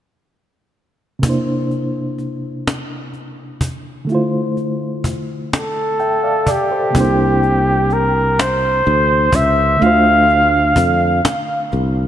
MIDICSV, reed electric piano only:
0, 0, Header, 1, 2, 480
1, 0, Start_track
1, 0, Tempo, 952381
1, 620, Time_signature, 6, 3, 24, 8
1, 6086, End_track
2, 0, Start_track
2, 0, Title_t, "Reed electric piano"
2, 0, Program_c, 0, 4
2, 601, Note_on_c, 0, 48, 57
2, 616, Note_on_c, 0, 58, 54
2, 628, Note_on_c, 0, 62, 48
2, 639, Note_on_c, 0, 64, 55
2, 652, Note_on_c, 0, 72, 62
2, 715, Control_c, 0, 64, 127
2, 2030, Note_off_c, 0, 48, 0
2, 2038, Note_off_c, 0, 58, 0
2, 2040, Note_on_c, 0, 50, 62
2, 2044, Note_off_c, 0, 62, 0
2, 2050, Note_off_c, 0, 64, 0
2, 2052, Note_on_c, 0, 57, 56
2, 2056, Note_off_c, 0, 72, 0
2, 2066, Note_on_c, 0, 64, 56
2, 2067, Control_c, 0, 64, 0
2, 2076, Note_on_c, 0, 65, 56
2, 2090, Note_on_c, 0, 72, 66
2, 2155, Control_c, 0, 64, 127
2, 3016, Note_off_c, 0, 72, 0
2, 3023, Note_on_c, 0, 79, 49
2, 3027, Note_on_c, 0, 76, 40
2, 3136, Note_off_c, 0, 79, 0
2, 3138, Note_off_c, 0, 76, 0
2, 3141, Note_on_c, 0, 77, 61
2, 3144, Note_on_c, 0, 74, 51
2, 3255, Note_off_c, 0, 77, 0
2, 3256, Note_off_c, 0, 74, 0
2, 3266, Note_on_c, 0, 74, 57
2, 3378, Note_off_c, 0, 74, 0
2, 3385, Note_on_c, 0, 72, 50
2, 3388, Note_on_c, 0, 69, 45
2, 3470, Note_off_c, 0, 50, 0
2, 3476, Note_off_c, 0, 57, 0
2, 3480, Note_on_c, 0, 48, 54
2, 3483, Note_off_c, 0, 64, 0
2, 3488, Note_off_c, 0, 65, 0
2, 3491, Note_on_c, 0, 58, 52
2, 3502, Note_on_c, 0, 62, 53
2, 3506, Control_c, 0, 64, 0
2, 3515, Note_on_c, 0, 64, 54
2, 3524, Note_off_c, 0, 72, 0
2, 3530, Note_on_c, 0, 72, 61
2, 3586, Control_c, 0, 64, 127
2, 3612, Note_off_c, 0, 69, 0
2, 4910, Note_off_c, 0, 48, 0
2, 4916, Note_off_c, 0, 58, 0
2, 4921, Note_off_c, 0, 62, 0
2, 4924, Note_on_c, 0, 50, 62
2, 4928, Note_off_c, 0, 64, 0
2, 4935, Note_off_c, 0, 72, 0
2, 4935, Note_on_c, 0, 57, 54
2, 4947, Note_on_c, 0, 62, 54
2, 4948, Control_c, 0, 64, 0
2, 4960, Note_on_c, 0, 65, 52
2, 4972, Note_on_c, 0, 72, 62
2, 5043, Control_c, 0, 64, 127
2, 6086, Note_off_c, 0, 50, 0
2, 6086, Note_off_c, 0, 57, 0
2, 6086, Note_off_c, 0, 62, 0
2, 6086, Note_off_c, 0, 65, 0
2, 6086, Note_off_c, 0, 72, 0
2, 6086, End_track
0, 0, End_of_file